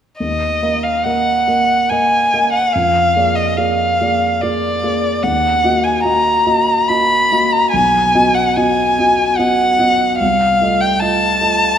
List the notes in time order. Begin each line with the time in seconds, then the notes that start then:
0.19 D#2 D#5
0.62 A#3 A#4 D#5
0.83 F5
1.04 A#3 A#4 D#5 F#5
1.47 A#3 A#4 D#5
1.89 A#3 A#4 D#5 G#5
2.33 A#3 A#4 D#5
2.52 F#5
2.72 F2 F5
3.16 A#3 G#4 D5
3.35 D#5
3.56 A#3 G#4 D5 F5
4.01 A#3 G#4 D5
4.41 A#3 G#4 D5
4.83 A#3 G#4 D5
5.23 D#2 F#5
5.64 A#3 F#4 D#5
5.84 G#5
6.04 A#3 F#4 D#5 A#5
6.47 A#3 F#4 D#5
6.88 A#3 F#4 D#5 B5
7.32 A#3 F#4 D#5
7.53 A#5
7.72 B1 G#5
8.15 B3 F#4 D#5
8.34 F#5
8.56 B3 F#4 D#5 G#5
8.99 B3 F#4 D#5
9.37 B3 F#4 D#5 F#5
9.79 B3 F#4 D#5
10.19 C2 F5
10.61 A3 F4 D#5
10.81 G5
11.00 A3 F4 D#5 A5
11.41 A3 F4 D#5